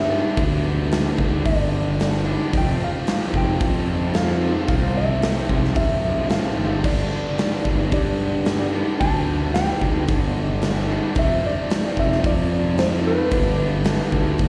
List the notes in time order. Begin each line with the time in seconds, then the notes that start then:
Already playing: G2 G3 E5
0.10 G2 D3 G3 B3 D4
0.37 D2 G2 D3 G3 B3 D4, kick, open hi-hat
0.92 snare, open hi-hat
1.18 D2, kick
1.45 G1 D5, kick, open hi-hat
2.00 snare, open hi-hat
2.26 G2 D3 G3 B3 D4
2.52 F1 F2 C3 F3 A3 C4, kick, open hi-hat
2.58 G5
2.84 F5
3.07 snare, open hi-hat
3.33 F1 G5, kick
3.60 F2, kick, open hi-hat
4.14 F5, snare, open hi-hat
4.41 F2 C3 F3 A3 C4
4.67 C2 F2 C3 F3 A3 C4 F5, kick, open hi-hat
4.97 E5
5.22 snare, open hi-hat
5.49 C2, kick
5.64 snare
5.75 F1 E5, kick, open hi-hat
6.03 B1
6.30 A1 F5, snare, open hi-hat
6.56 G1 F2 C3 F3 A3 C4
6.83 G1 G2 D3 G3 B3 D4 D5, kick, crash
7.38 snare, open hi-hat
7.65 G1, kick
7.92 G2 D5, kick, open hi-hat
8.45 snare, open hi-hat
8.72 G2 D3 G3 B3 D4
8.99 D2 G2 D3 G3 B3 D4 A5, kick, open hi-hat
9.54 G5, snare, open hi-hat
9.81 D2, kick
10.08 G1, kick, open hi-hat
10.62 snare, open hi-hat
10.90 G2 D3 G3 B3 D4
11.15 F1 F2 C3 F3 A3 C4 E5, kick, open hi-hat
11.46 D5
11.70 snare, open hi-hat
11.97 F1 E5, kick
12.12 snare
12.24 F2 D5, kick, open hi-hat
12.78 C5, snare, open hi-hat
13.04 F2 C3 F3 A3 C4 B4
13.30 G1 G2 D3 G3 B3 D4, kick, open hi-hat
13.85 snare, open hi-hat
14.12 D2, kick
14.38 G1, kick, open hi-hat